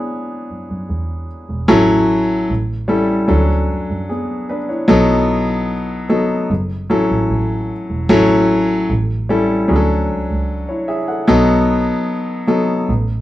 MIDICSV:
0, 0, Header, 1, 3, 480
1, 0, Start_track
1, 0, Key_signature, 3, "major"
1, 0, Tempo, 798935
1, 1019, Time_signature, 4, 2, 24, 8
1, 7938, End_track
2, 0, Start_track
2, 0, Title_t, "Grand piano"
2, 0, Program_c, 0, 0
2, 0, Control_c, 0, 64, 127
2, 0, Note_on_c, 0, 54, 51
2, 0, Note_on_c, 0, 56, 44
2, 0, Note_on_c, 0, 59, 52
2, 0, Note_on_c, 0, 62, 62
2, 0, Note_on_c, 0, 64, 62
2, 0, Note_on_c, 0, 68, 74
2, 0, Note_on_c, 0, 71, 75
2, 0, Note_on_c, 0, 73, 83
2, 0, Note_on_c, 0, 74, 95
2, 749, Note_off_c, 0, 68, 0
2, 753, Note_off_c, 0, 59, 0
2, 1010, Note_off_c, 0, 54, 0
2, 1010, Note_on_c, 0, 54, 120
2, 1011, Note_on_c, 0, 61, 104
2, 1012, Note_off_c, 0, 64, 0
2, 1012, Note_on_c, 0, 64, 106
2, 1013, Note_on_c, 0, 69, 125
2, 1026, Note_off_c, 0, 73, 0
2, 1026, Control_c, 0, 64, 0
2, 1027, Note_off_c, 0, 62, 0
2, 1027, Note_off_c, 0, 71, 0
2, 1029, Note_off_c, 0, 56, 0
2, 1031, Note_off_c, 0, 74, 0
2, 1131, Control_c, 0, 64, 127
2, 1495, Note_off_c, 0, 54, 0
2, 1495, Note_off_c, 0, 61, 0
2, 1496, Note_off_c, 0, 64, 0
2, 1496, Note_off_c, 0, 69, 0
2, 1508, Control_c, 0, 64, 0
2, 1626, Control_c, 0, 64, 127
2, 1729, Note_on_c, 0, 55, 83
2, 1732, Note_on_c, 0, 61, 75
2, 1733, Note_on_c, 0, 64, 79
2, 1737, Note_on_c, 0, 69, 96
2, 1961, Note_off_c, 0, 61, 0
2, 1964, Note_off_c, 0, 69, 0
2, 1968, Note_on_c, 0, 54, 86
2, 1970, Note_on_c, 0, 61, 76
2, 1973, Note_on_c, 0, 62, 77
2, 1973, Note_on_c, 0, 69, 94
2, 1975, Note_off_c, 0, 55, 0
2, 1977, Note_off_c, 0, 64, 0
2, 1988, Control_c, 0, 64, 0
2, 2087, Control_c, 0, 64, 127
2, 2455, Note_off_c, 0, 61, 0
2, 2457, Note_off_c, 0, 62, 0
2, 2457, Note_off_c, 0, 69, 0
2, 2459, Note_on_c, 0, 68, 63
2, 2464, Note_on_c, 0, 59, 50
2, 2688, Note_off_c, 0, 68, 0
2, 2690, Note_off_c, 0, 59, 0
2, 2700, Note_on_c, 0, 71, 69
2, 2707, Note_on_c, 0, 62, 64
2, 2742, Note_off_c, 0, 54, 0
2, 2814, Note_off_c, 0, 71, 0
2, 2818, Note_off_c, 0, 62, 0
2, 2818, Note_on_c, 0, 73, 60
2, 2820, Note_on_c, 0, 64, 49
2, 2930, Note_on_c, 0, 54, 120
2, 2932, Note_on_c, 0, 63, 106
2, 2934, Note_on_c, 0, 59, 107
2, 2938, Note_on_c, 0, 69, 127
2, 2949, Control_c, 0, 64, 0
2, 3041, Control_c, 0, 64, 127
2, 3047, Note_off_c, 0, 73, 0
2, 3048, Note_off_c, 0, 64, 0
2, 3431, Note_off_c, 0, 54, 0
2, 3432, Note_off_c, 0, 63, 0
2, 3433, Note_off_c, 0, 59, 0
2, 3435, Note_off_c, 0, 69, 0
2, 3660, Note_on_c, 0, 59, 77
2, 3661, Note_on_c, 0, 54, 82
2, 3661, Note_on_c, 0, 63, 77
2, 3664, Note_on_c, 0, 69, 97
2, 3900, Note_off_c, 0, 59, 0
2, 3901, Note_off_c, 0, 54, 0
2, 3901, Note_off_c, 0, 63, 0
2, 3902, Note_off_c, 0, 69, 0
2, 3909, Control_c, 0, 64, 0
2, 4008, Control_c, 0, 64, 127
2, 4143, Note_on_c, 0, 54, 84
2, 4146, Note_on_c, 0, 61, 79
2, 4147, Note_on_c, 0, 64, 76
2, 4150, Note_on_c, 0, 69, 102
2, 4638, Note_off_c, 0, 54, 0
2, 4639, Note_off_c, 0, 61, 0
2, 4640, Note_off_c, 0, 64, 0
2, 4641, Note_off_c, 0, 69, 0
2, 4862, Note_on_c, 0, 54, 126
2, 4862, Note_on_c, 0, 61, 114
2, 4865, Note_on_c, 0, 64, 113
2, 4868, Note_on_c, 0, 69, 127
2, 4869, Control_c, 0, 64, 0
2, 4984, Control_c, 0, 64, 127
2, 5341, Note_off_c, 0, 54, 0
2, 5341, Note_off_c, 0, 61, 0
2, 5343, Note_off_c, 0, 64, 0
2, 5345, Note_off_c, 0, 69, 0
2, 5348, Control_c, 0, 64, 0
2, 5455, Control_c, 0, 64, 127
2, 5583, Note_on_c, 0, 55, 81
2, 5585, Note_on_c, 0, 61, 82
2, 5588, Note_on_c, 0, 64, 82
2, 5590, Note_on_c, 0, 69, 101
2, 5810, Note_off_c, 0, 61, 0
2, 5816, Note_on_c, 0, 54, 87
2, 5819, Note_on_c, 0, 61, 83
2, 5819, Note_on_c, 0, 62, 79
2, 5822, Note_off_c, 0, 55, 0
2, 5822, Note_on_c, 0, 68, 74
2, 5824, Note_off_c, 0, 64, 0
2, 5825, Note_off_c, 0, 69, 0
2, 5828, Control_c, 0, 64, 0
2, 5861, Note_off_c, 0, 68, 0
2, 5861, Note_on_c, 0, 69, 101
2, 5941, Control_c, 0, 64, 127
2, 6321, Note_off_c, 0, 69, 0
2, 6420, Note_on_c, 0, 73, 62
2, 6426, Note_on_c, 0, 64, 52
2, 6534, Note_off_c, 0, 73, 0
2, 6537, Note_off_c, 0, 64, 0
2, 6537, Note_on_c, 0, 76, 71
2, 6540, Note_on_c, 0, 68, 66
2, 6586, Note_off_c, 0, 54, 0
2, 6588, Note_off_c, 0, 61, 0
2, 6588, Note_off_c, 0, 62, 0
2, 6653, Note_off_c, 0, 76, 0
2, 6654, Note_off_c, 0, 68, 0
2, 6657, Note_on_c, 0, 78, 63
2, 6664, Note_on_c, 0, 69, 53
2, 6771, Note_off_c, 0, 69, 0
2, 6774, Note_on_c, 0, 54, 110
2, 6775, Note_on_c, 0, 59, 110
2, 6777, Note_on_c, 0, 63, 104
2, 6780, Note_on_c, 0, 69, 124
2, 6787, Control_c, 0, 64, 0
2, 6887, Note_off_c, 0, 78, 0
2, 6891, Control_c, 0, 64, 127
2, 7273, Note_off_c, 0, 54, 0
2, 7273, Note_off_c, 0, 59, 0
2, 7274, Note_off_c, 0, 63, 0
2, 7276, Note_off_c, 0, 69, 0
2, 7494, Note_on_c, 0, 54, 85
2, 7497, Note_on_c, 0, 63, 73
2, 7498, Note_on_c, 0, 59, 77
2, 7499, Note_on_c, 0, 69, 98
2, 7737, Note_off_c, 0, 54, 0
2, 7739, Note_off_c, 0, 59, 0
2, 7739, Note_off_c, 0, 63, 0
2, 7740, Note_off_c, 0, 69, 0
2, 7748, Control_c, 0, 64, 0
2, 7841, Control_c, 0, 64, 127
2, 7938, End_track
3, 0, Start_track
3, 0, Title_t, "Double bass"
3, 0, Program_c, 1, 43
3, 299, Note_on_c, 1, 42, 37
3, 388, Note_off_c, 1, 42, 0
3, 419, Note_on_c, 1, 42, 71
3, 526, Note_off_c, 1, 42, 0
3, 537, Note_on_c, 1, 40, 82
3, 751, Note_off_c, 1, 40, 0
3, 896, Note_on_c, 1, 28, 70
3, 1004, Note_off_c, 1, 28, 0
3, 1021, Note_on_c, 1, 33, 98
3, 1447, Note_off_c, 1, 33, 0
3, 1499, Note_on_c, 1, 33, 90
3, 1927, Note_off_c, 1, 33, 0
3, 1981, Note_on_c, 1, 38, 96
3, 2194, Note_off_c, 1, 38, 0
3, 2221, Note_on_c, 1, 42, 47
3, 2310, Note_off_c, 1, 42, 0
3, 2341, Note_on_c, 1, 42, 84
3, 2448, Note_off_c, 1, 42, 0
3, 2944, Note_on_c, 1, 35, 111
3, 3758, Note_off_c, 1, 35, 0
3, 3906, Note_on_c, 1, 30, 102
3, 4117, Note_off_c, 1, 30, 0
3, 4148, Note_on_c, 1, 33, 49
3, 4234, Note_off_c, 1, 33, 0
3, 4269, Note_on_c, 1, 33, 82
3, 4372, Note_off_c, 1, 33, 0
3, 4383, Note_on_c, 1, 33, 89
3, 4596, Note_off_c, 1, 33, 0
3, 4743, Note_on_c, 1, 28, 79
3, 4849, Note_off_c, 1, 28, 0
3, 4864, Note_on_c, 1, 33, 103
3, 5290, Note_off_c, 1, 33, 0
3, 5343, Note_on_c, 1, 33, 104
3, 5769, Note_off_c, 1, 33, 0
3, 5826, Note_on_c, 1, 38, 95
3, 6037, Note_off_c, 1, 38, 0
3, 6065, Note_on_c, 1, 37, 48
3, 6152, Note_off_c, 1, 37, 0
3, 6184, Note_on_c, 1, 37, 80
3, 6289, Note_off_c, 1, 37, 0
3, 6781, Note_on_c, 1, 35, 100
3, 7101, Note_off_c, 1, 35, 0
3, 7743, Note_on_c, 1, 33, 98
3, 7938, Note_off_c, 1, 33, 0
3, 7938, End_track
0, 0, End_of_file